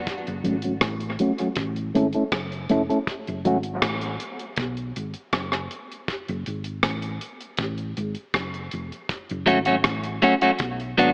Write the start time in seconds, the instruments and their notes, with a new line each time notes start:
0.07 kick, closed hi-hat
0.27 fingered electric bass F#1, closed hi-hat
0.44 fingered electric bass G#1, clean electric guitar F#3 A3 C#4 F#4, closed hi-hat
0.62 clean electric guitar F#3 A3 C#4 F#4, closed hi-hat
0.81 fingered electric bass A1, kick, cross-stick, closed hi-hat
1.00 closed hi-hat
1.19 clean electric guitar F#3 A3 C#4 F#4, closed hi-hat
1.38 clean electric guitar F#3 A3 C#4 F#4, closed hi-hat
1.56 fingered electric bass A1, kick, closed hi-hat
1.76 closed hi-hat
1.95 fingered electric bass G#1, clean electric guitar A3 C#4 E4 A4, closed hi-hat
2.13 clean electric guitar A3 C#4 E4 A4, closed hi-hat
2.32 fingered electric bass F#1, kick, cross-stick, closed hi-hat
2.52 closed hi-hat
2.69 fingered electric bass F1, clean electric guitar A3 C#4 E4 A4, closed hi-hat
2.90 clean electric guitar A3 C#4 E4 A4, closed hi-hat
3.07 kick, closed hi-hat
3.27 fingered electric bass F#1, closed hi-hat
3.45 fingered electric bass G#1, clean electric guitar F#3 A3 C#4 F#4, closed hi-hat
3.63 closed hi-hat
3.82 fingered electric bass A1, kick, cross-stick, closed hi-hat
4.01 closed hi-hat
4.20 closed hi-hat
4.39 closed hi-hat
4.56 fingered electric bass B1, kick, closed hi-hat
4.77 closed hi-hat
4.96 fingered electric bass G#1, closed hi-hat
5.14 closed hi-hat
5.33 fingered electric bass F#1, kick, cross-stick, closed hi-hat
5.52 cross-stick, closed hi-hat
5.71 closed hi-hat
5.92 closed hi-hat
6.08 kick, closed hi-hat
6.28 fingered electric bass F#1, closed hi-hat
6.46 fingered electric bass G#1, closed hi-hat
6.64 closed hi-hat
6.83 fingered electric bass A1, kick, cross-stick, closed hi-hat
7.02 closed hi-hat
7.21 closed hi-hat
7.41 closed hi-hat
7.57 fingered electric bass A1, kick, closed hi-hat
7.78 closed hi-hat
7.97 fingered electric bass G#1, closed hi-hat
8.15 closed hi-hat
8.34 fingered electric bass F#1, kick, cross-stick, closed hi-hat
8.54 closed hi-hat
8.71 fingered electric bass F1, closed hi-hat
8.92 closed hi-hat
9.09 kick, closed hi-hat
9.30 fingered electric bass F#1, closed hi-hat
9.46 fingered electric bass G#1, clean electric guitar F#3 A3 C#4 F#4, closed hi-hat
9.65 clean electric guitar F#3 A3 C#4 F#4, closed hi-hat
9.84 fingered electric bass A1, kick, cross-stick, closed hi-hat
10.03 closed hi-hat
10.22 clean electric guitar F#3 A3 C#4 F#4, closed hi-hat
10.41 clean electric guitar F#3 A3 C#4 F#4, closed hi-hat
10.59 fingered electric bass B1, kick, closed hi-hat
10.80 closed hi-hat
10.98 fingered electric bass G#1, clean electric guitar F#3 B3 D4 F#4, closed hi-hat